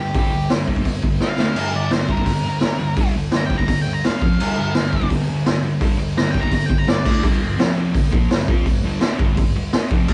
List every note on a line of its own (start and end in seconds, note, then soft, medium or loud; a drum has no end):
0.00 0.14 G2 medium
0.00 0.14 D3 medium
0.00 0.15 G4 medium
0.14 0.32 G2 medium
0.14 0.32 D3 medium
0.14 0.50 G4 loud
0.14 kick loud
0.14 open hi-hat medium
0.19 0.33 G3 loud
0.33 0.48 G2 medium
0.33 0.49 D3 medium
0.50 0.66 G2 medium
0.50 0.66 D3 medium
0.50 snare loud
0.50 open hi-hat medium
0.68 0.84 G2 medium
0.68 0.84 D3 loud
0.68 0.85 G3 loud
0.68 kick medium
0.76 kick medium
0.85 1.01 G2 medium
0.85 1.01 D3 medium
0.85 kick medium
0.85 open hi-hat medium
1.03 1.19 G2 medium
1.03 1.20 D3 medium
1.03 kick medium
1.20 1.36 G2 medium
1.20 1.37 D3 medium
1.20 1.73 F5 loud
1.20 snare medium
1.38 1.55 D3 medium
1.38 1.55 A3 loud
1.38 1.56 D4 loud
1.38 snare medium
1.55 1.71 G2 medium
1.55 1.72 D3 medium
1.55 1.73 G3 loud
1.55 crash loud
1.73 1.89 G2 medium
1.73 1.89 D3 medium
1.73 1.92 D5 loud
1.91 2.06 G2 medium
1.91 2.06 D3 medium
1.91 2.11 C5 medium
1.91 snare loud
1.91 open hi-hat medium
2.07 2.25 G2 loud
2.07 2.25 D3 medium
2.07 2.25 G3 loud
2.07 3.13 A#4 loud
2.07 kick medium
2.17 kick medium
2.26 2.42 G2 medium
2.26 2.42 D3 medium
2.26 kick loud
2.26 open hi-hat medium
2.45 2.60 G2 medium
2.45 2.60 D3 medium
2.61 2.78 G2 medium
2.61 2.78 D3 medium
2.61 snare loud
2.61 open hi-hat medium
2.80 2.96 G2 medium
2.80 2.96 D3 medium
2.96 3.14 G2 medium
2.96 3.14 D3 loud
2.96 3.15 G3 medium
2.96 kick loud
2.96 open hi-hat medium
3.15 3.31 G2 medium
3.15 3.31 D3 medium
3.32 3.49 G2 medium
3.32 3.49 D3 medium
3.32 snare loud
3.32 open hi-hat medium
3.37 3.45 A#5 loud
3.46 3.57 G5 medium
3.50 3.67 G2 medium
3.50 3.67 D3 medium
3.50 3.68 G3 loud
3.50 kick medium
3.57 3.67 A#5 loud
3.57 kick medium
3.68 3.85 G2 medium
3.68 3.85 D3 medium
3.68 3.80 A#5 loud
3.68 kick loud
3.68 open hi-hat medium
3.82 3.93 G5 loud
3.87 4.02 G2 medium
3.87 4.02 D3 medium
3.93 4.04 A#5 loud
4.04 4.20 G2 medium
4.04 4.20 D3 medium
4.04 5.08 F5 loud
4.04 snare loud
4.04 open hi-hat medium
4.22 4.38 F2 loud
4.22 4.39 C3 loud
4.22 4.39 F3 loud
4.22 kick loud
4.40 4.56 G2 medium
4.40 4.56 D3 medium
4.40 4.57 G3 loud
4.40 crash loud
4.58 4.74 G2 medium
4.58 4.74 D3 medium
4.75 4.91 G2 medium
4.75 4.91 D3 medium
4.75 snare loud
4.75 open hi-hat medium
4.93 5.10 G2 loud
4.93 5.09 D3 loud
4.93 5.10 G3 medium
4.93 kick medium
5.02 kick medium
5.10 5.27 G2 medium
5.10 5.27 D3 medium
5.10 kick loud
5.10 open hi-hat medium
5.29 5.44 G2 medium
5.29 5.45 D3 medium
5.46 5.62 G2 medium
5.46 5.62 D3 medium
5.46 snare loud
5.46 open hi-hat medium
5.64 5.79 G2 medium
5.64 5.80 D3 medium
5.80 5.97 G2 medium
5.80 5.98 D3 loud
5.80 5.99 G3 medium
5.80 kick loud
5.80 open hi-hat medium
5.98 6.15 G2 medium
5.98 6.15 D3 medium
6.17 6.33 G2 medium
6.17 6.34 D3 medium
6.17 6.31 A#5 loud
6.17 snare loud
6.17 open hi-hat medium
6.31 6.50 G2 medium
6.31 6.40 G5 medium
6.31 kick medium
6.35 6.51 D3 loud
6.35 6.52 G3 medium
6.40 6.52 A#5 loud
6.40 kick medium
6.52 6.68 G2 medium
6.52 6.68 D3 medium
6.52 6.66 A#5 medium
6.52 kick loud
6.52 open hi-hat medium
6.66 6.86 G2 medium
6.66 6.86 D3 medium
6.66 6.78 G5 loud
6.66 kick medium
6.78 6.89 A#5 loud
6.87 7.04 G2 medium
6.87 7.04 D3 medium
6.87 7.23 D5 loud
6.87 snare loud
6.87 open hi-hat medium
7.05 7.22 D3 loud
7.05 7.23 A3 medium
7.05 7.23 D4 loud
7.05 kick loud
7.05 crash loud
7.23 7.39 G2 loud
7.23 7.39 D3 medium
7.23 7.41 G3 loud
7.23 kick loud
7.23 open hi-hat medium
7.40 7.55 G2 medium
7.40 7.55 D3 medium
7.57 7.93 F2 loud
7.57 7.94 C3 loud
7.57 7.94 F3 loud
7.57 snare loud
7.57 open hi-hat medium
7.94 8.09 G2 medium
7.94 8.09 D3 medium
7.94 kick loud
7.94 open hi-hat medium
8.11 8.29 A#2 loud
8.11 8.30 F3 loud
8.11 8.30 A#3 loud
8.11 kick loud
8.30 8.45 G2 medium
8.30 8.45 D3 medium
8.30 snare loud
8.30 open hi-hat medium
8.48 8.65 F3 loud
8.48 8.66 C4 medium
8.48 8.66 F4 loud
8.48 kick loud
8.66 8.80 G2 medium
8.66 8.80 D3 medium
8.66 kick medium
8.66 open hi-hat medium
8.84 9.01 G2 medium
8.84 8.99 D3 medium
8.84 9.01 G3 loud
9.01 9.18 D3 medium
9.01 9.19 A3 loud
9.01 9.19 D4 loud
9.01 snare loud
9.01 open hi-hat medium
9.19 9.35 G2 loud
9.19 9.35 D3 loud
9.19 9.37 G3 loud
9.19 kick loud
9.37 9.51 G2 medium
9.37 9.51 D3 medium
9.37 kick loud
9.37 open hi-hat medium
9.56 9.70 G2 medium
9.56 9.70 D3 medium
9.73 snare loud
9.73 open hi-hat medium
9.91 10.08 F2 loud
9.91 10.08 C3 loud
9.91 10.09 F3 loud
9.91 kick loud
10.08 10.13 A#2 medium
10.08 10.13 F3 loud
10.08 10.13 A#3 loud
10.08 kick loud
10.08 crash loud